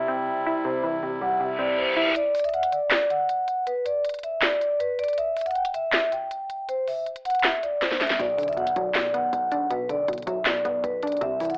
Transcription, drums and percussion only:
2.16 closed hi-hat
2.35 closed hi-hat, open hi-hat
2.39 closed hi-hat
2.44 closed hi-hat
2.49 closed hi-hat
2.54 closed hi-hat
2.63 closed hi-hat
2.72 closed hi-hat
2.91 snare, clap, closed hi-hat
3.10 closed hi-hat
3.29 closed hi-hat
3.48 closed hi-hat
3.67 closed hi-hat
3.86 closed hi-hat
4.05 closed hi-hat
4.09 closed hi-hat
4.14 closed hi-hat
4.19 closed hi-hat
4.23 closed hi-hat
4.42 snare, clap, closed hi-hat
4.61 closed hi-hat
4.80 closed hi-hat
4.99 closed hi-hat
5.04 closed hi-hat
5.08 closed hi-hat
5.13 closed hi-hat
5.18 closed hi-hat
5.37 closed hi-hat, open hi-hat
5.41 closed hi-hat
5.46 closed hi-hat
5.51 closed hi-hat
5.55 closed hi-hat
5.65 closed hi-hat
5.74 closed hi-hat
5.93 snare, clap, closed hi-hat
6.12 closed hi-hat
6.31 closed hi-hat
6.50 closed hi-hat
6.69 closed hi-hat
6.88 open hi-hat
7.06 closed hi-hat
7.16 closed hi-hat
7.25 closed hi-hat
7.30 closed hi-hat
7.35 closed hi-hat
7.39 closed hi-hat
7.44 snare, clap, closed hi-hat
7.63 closed hi-hat
7.82 snare, closed hi-hat
7.91 snare
8.01 snare, closed hi-hat
8.07 snare, closed hi-hat
8.13 closed hi-hat
8.20 closed hi-hat
8.38 closed hi-hat, open hi-hat
8.43 closed hi-hat
8.48 closed hi-hat
8.53 closed hi-hat
8.57 closed hi-hat
8.67 closed hi-hat
8.76 closed hi-hat
8.94 snare, clap, closed hi-hat
9.14 closed hi-hat
9.33 closed hi-hat
9.52 closed hi-hat
9.71 closed hi-hat
9.89 closed hi-hat
10.08 closed hi-hat
10.13 closed hi-hat
10.18 closed hi-hat
10.22 closed hi-hat
10.27 closed hi-hat
10.45 snare, clap, closed hi-hat
10.65 closed hi-hat
10.84 closed hi-hat
11.03 closed hi-hat
11.07 closed hi-hat
11.12 closed hi-hat
11.17 closed hi-hat
11.21 closed hi-hat
11.40 closed hi-hat, open hi-hat
11.45 closed hi-hat
11.50 closed hi-hat
11.55 closed hi-hat

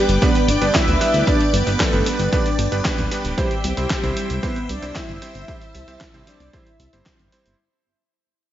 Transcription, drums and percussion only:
0.09 closed hi-hat
0.22 kick, closed hi-hat
0.35 closed hi-hat
0.48 closed hi-hat
0.62 closed hi-hat
0.75 kick, snare, clap, closed hi-hat
0.88 closed hi-hat
1.01 closed hi-hat
1.14 closed hi-hat
1.27 kick, closed hi-hat
1.41 closed hi-hat
1.54 closed hi-hat
1.67 closed hi-hat
1.80 kick, snare, clap, closed hi-hat
1.93 closed hi-hat
2.06 closed hi-hat
2.19 closed hi-hat
2.33 kick, closed hi-hat
2.46 closed hi-hat
2.59 closed hi-hat
2.72 closed hi-hat
2.85 kick, snare, clap, closed hi-hat
2.98 closed hi-hat
3.12 closed hi-hat
3.25 closed hi-hat
3.38 kick, closed hi-hat
3.51 closed hi-hat
3.64 closed hi-hat
3.77 closed hi-hat
3.90 kick, snare, clap, closed hi-hat
4.03 closed hi-hat
4.17 closed hi-hat
4.30 closed hi-hat
4.43 kick, closed hi-hat
4.56 closed hi-hat
4.69 closed hi-hat
4.83 closed hi-hat
4.96 kick, snare, clap, closed hi-hat
5.09 closed hi-hat
5.22 closed hi-hat
5.35 closed hi-hat
5.48 kick, closed hi-hat
5.61 closed hi-hat
5.75 closed hi-hat
5.88 closed hi-hat
6.01 kick, snare, clap, closed hi-hat
6.14 closed hi-hat
6.27 snare, closed hi-hat
6.40 closed hi-hat
6.53 kick, closed hi-hat
6.67 closed hi-hat
6.80 closed hi-hat
6.93 closed hi-hat
7.06 kick, snare, clap, closed hi-hat
7.19 closed hi-hat
7.32 closed hi-hat
7.46 closed hi-hat

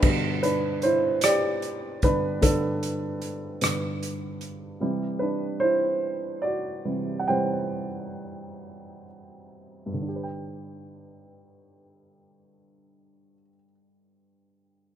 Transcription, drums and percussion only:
0.02 kick, crash
0.43 closed hi-hat
0.82 closed hi-hat
1.21 cross-stick, closed hi-hat
1.62 closed hi-hat
2.02 kick, closed hi-hat
2.42 kick, closed hi-hat
2.83 closed hi-hat
3.22 closed hi-hat
3.61 cross-stick, closed hi-hat
4.03 closed hi-hat
4.41 closed hi-hat

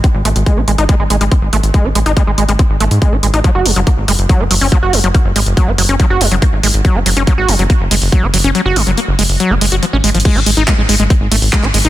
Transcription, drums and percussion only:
0.04 kick, closed hi-hat
0.25 closed hi-hat
0.36 closed hi-hat
0.46 kick, closed hi-hat
0.68 closed hi-hat
0.78 closed hi-hat
0.89 kick, closed hi-hat
1.10 closed hi-hat
1.21 closed hi-hat
1.32 kick, closed hi-hat
1.53 closed hi-hat
1.63 closed hi-hat
1.74 kick, closed hi-hat
1.95 closed hi-hat
2.06 closed hi-hat
2.17 kick, closed hi-hat
2.38 closed hi-hat
2.49 closed hi-hat
2.59 kick, closed hi-hat
2.80 closed hi-hat
2.91 closed hi-hat
3.02 kick, closed hi-hat
3.23 closed hi-hat
3.34 closed hi-hat
3.44 kick, closed hi-hat
3.66 open hi-hat
3.76 closed hi-hat
3.87 kick, closed hi-hat
4.08 open hi-hat
4.19 closed hi-hat
4.29 kick, closed hi-hat
4.51 open hi-hat
4.61 open hi-hat
4.72 kick, closed hi-hat
4.93 open hi-hat
5.04 closed hi-hat
5.14 kick, closed hi-hat
5.36 open hi-hat
5.46 closed hi-hat
5.57 kick, closed hi-hat
5.78 open hi-hat
5.89 closed hi-hat
6.00 kick, closed hi-hat
6.21 open hi-hat
6.32 closed hi-hat
6.42 kick, closed hi-hat
6.63 open hi-hat
6.74 closed hi-hat
6.85 kick, closed hi-hat
7.06 open hi-hat
7.17 closed hi-hat
7.27 kick, closed hi-hat
7.49 open hi-hat
7.59 closed hi-hat
7.70 kick, closed hi-hat
7.91 open hi-hat
8.02 open hi-hat
8.12 kick, closed hi-hat
8.34 open hi-hat
8.44 closed hi-hat
8.55 closed hi-hat
8.76 open hi-hat
8.87 closed hi-hat
8.97 closed hi-hat
9.19 open hi-hat
9.29 open hi-hat
9.40 closed hi-hat
9.61 open hi-hat
9.72 closed hi-hat
9.83 closed hi-hat
10.04 closed hi-hat, open hi-hat
10.09 closed hi-hat
10.15 closed hi-hat
10.20 closed hi-hat
10.25 kick, crash
10.46 open hi-hat
10.57 closed hi-hat
10.68 kick, clap, closed hi-hat
10.89 open hi-hat
11.00 closed hi-hat
11.10 kick, closed hi-hat
11.32 open hi-hat
11.42 open hi-hat
11.53 kick, clap
11.63 clap
11.74 open hi-hat
11.85 closed hi-hat

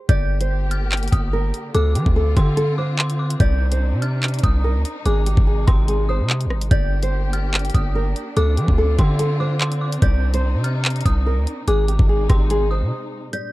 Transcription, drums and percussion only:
0.09 kick, closed hi-hat
0.41 closed hi-hat
0.71 closed hi-hat
0.92 clap, closed hi-hat
0.97 closed hi-hat
1.03 closed hi-hat
1.08 closed hi-hat
1.12 kick, closed hi-hat
1.54 closed hi-hat
1.75 closed hi-hat
1.95 closed hi-hat
2.06 kick
2.37 kick, closed hi-hat
2.57 closed hi-hat
2.99 clap
3.10 closed hi-hat
3.30 closed hi-hat
3.40 kick, closed hi-hat
3.72 closed hi-hat
4.02 closed hi-hat
4.23 clap, closed hi-hat
4.28 closed hi-hat
4.34 closed hi-hat
4.39 closed hi-hat
4.43 kick, closed hi-hat
4.85 closed hi-hat
5.06 closed hi-hat
5.26 closed hi-hat
5.37 kick
5.68 kick, cross-stick, closed hi-hat
5.88 closed hi-hat
6.30 clap
6.41 closed hi-hat
6.50 cross-stick
6.61 closed hi-hat
6.71 kick, closed hi-hat
7.03 closed hi-hat
7.33 closed hi-hat
7.54 clap, closed hi-hat
7.59 closed hi-hat
7.65 closed hi-hat
7.70 closed hi-hat
7.74 kick, closed hi-hat
8.16 closed hi-hat
8.37 closed hi-hat
8.57 closed hi-hat
8.68 kick
8.99 kick, closed hi-hat
9.19 closed hi-hat
9.61 clap
9.72 closed hi-hat
9.92 closed hi-hat
10.02 kick, closed hi-hat
10.34 closed hi-hat
10.64 closed hi-hat
10.85 clap, closed hi-hat
10.90 closed hi-hat
10.96 closed hi-hat
11.01 closed hi-hat
11.06 kick, closed hi-hat
11.47 closed hi-hat
11.68 closed hi-hat
11.88 closed hi-hat
11.99 kick
12.30 kick, cross-stick, closed hi-hat
12.50 closed hi-hat
13.33 closed hi-hat

